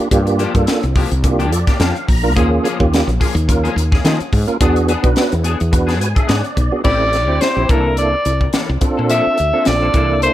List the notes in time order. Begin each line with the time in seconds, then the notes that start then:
0.11 G2 A#3 D4 F4 G4, kick, closed hi-hat
0.26 muted clean electric guitar stroke, closed hi-hat
0.38 F3 A#3 D4 G4, closed hi-hat
0.54 G2 A#3 D4 F4 A4, muted clean electric guitar stroke, kick, closed hi-hat
0.67 snare, closed hi-hat
0.83 C2, muted clean electric guitar stroke, closed hi-hat
0.95 F3 A#3 D4 F4 G4, kick, open hi-hat
1.10 C2, muted clean electric guitar stroke, closed hi-hat
1.24 A#3 D4 F4 G4, muted clean electric guitar stroke, kick, closed hi-hat
1.39 F3 A#3 D4 G4, closed hi-hat
1.52 F2 F4 A4 D5, muted clean electric guitar stroke, closed hi-hat
1.67 A#3 D4 G4, kick, snare, closed hi-hat
1.80 F2 F3 A#3 D4 G4 F5, snare, closed hi-hat
1.95 muted clean electric guitar stroke, closed hi-hat
2.07 A#1 A#5, muted clean electric guitar stroke, kick, open hi-hat
2.23 A#3 D4 F4 A#4
2.35 D#2 F3 A#3 C#4 F4 G#4, kick, closed hi-hat
2.51 muted clean electric guitar stroke
2.64 F3 A#3 C#4 G#4, closed hi-hat
2.79 D#2 A#3 C#4 F4 G4, muted clean electric guitar stroke, kick
2.94 snare, closed hi-hat
3.07 A#1, muted clean electric guitar stroke, closed hi-hat
3.20 F3 A#3 C#4 F4 G#4, kick, open hi-hat
3.35 D#2, muted clean electric guitar stroke, closed hi-hat
3.48 A#3 C#4 F4 A#4, muted clean electric guitar stroke, kick, closed hi-hat
3.64 F3 A#3 C#4 G#4, closed hi-hat
3.76 D#2 F4 A#4, closed hi-hat
3.92 A#3 C#4 G#4, kick, snare
4.04 D#3 F3 A#3 C#4 G#4, snare, closed hi-hat
4.20 muted clean electric guitar stroke, muted fretless electric bass stroke, closed hi-hat
4.33 G#2, muted clean electric guitar stroke, kick, open hi-hat
4.47 A#3 C#4 F4 A#4, muted fretless electric bass stroke, closed hi-hat
4.61 E2 B3 D4 F#4 G#4, kick, closed hi-hat
4.75 muted clean electric guitar stroke, closed hi-hat
4.88 B3 D4 G#4, closed hi-hat
5.03 B1 B3 D4 F#4 B4, muted clean electric guitar stroke, kick, closed hi-hat
5.16 snare, closed hi-hat
5.31 E2, muted clean electric guitar stroke, closed hi-hat
5.44 B3 D4 F#4 G#4, closed hi-hat
5.59 E2, muted clean electric guitar stroke, closed hi-hat
5.71 B3 D4 F#4 B4, muted clean electric guitar stroke, kick, closed hi-hat
5.87 B3 D4 G#4, snare, closed hi-hat
5.99 G#2 F#4 B4 G#5, muted clean electric guitar stroke, closed hi-hat
6.15 D4 G#4 E5, kick, closed hi-hat
6.27 G#2 B3 D4 G#4 D5, snare, closed hi-hat
6.43 muted clean electric guitar stroke, closed hi-hat
6.56 B1, muted clean electric guitar stroke, kick, closed hi-hat
6.72 B3 D4 F#4 G#4
6.84 A1 E3 C4 E4 G4 A4 D5, kick, crash
6.99 muted clean electric guitar stroke
7.12 muted clean electric guitar stroke, snare, closed hi-hat
7.27 D2 C4 E4 G4 C5
7.41 C5, muted clean electric guitar stroke, snare, closed hi-hat
7.55 A#1 C4 E4 G4
7.68 C2 E3 A#3 D4 E4 A4 A#4, kick, closed hi-hat
7.97 D5, closed hi-hat
8.12 muted clean electric guitar stroke
8.25 C2 E4 A4, muted clean electric guitar stroke, closed hi-hat
8.41 kick
8.53 E3 A#3 D4 A4, snare, closed hi-hat
8.69 C2, muted clean electric guitar stroke
8.81 C4 D4 F4 A4, muted clean electric guitar stroke, kick, closed hi-hat
8.97 A#2 A#3 D4 A4
9.10 F3 A#3 D4 A4 E5, closed hi-hat
9.25 muted clean electric guitar stroke, muted fretless electric bass stroke
9.38 D2, muted clean electric guitar stroke, closed hi-hat
9.53 A#3 C4 D4 F4 A4
9.65 A#1 D5, snare, closed hi-hat
9.82 A#3 D4 A4
9.94 C2 E3 A#3 D4 E4 A4, kick, closed hi-hat
10.22 C5, closed hi-hat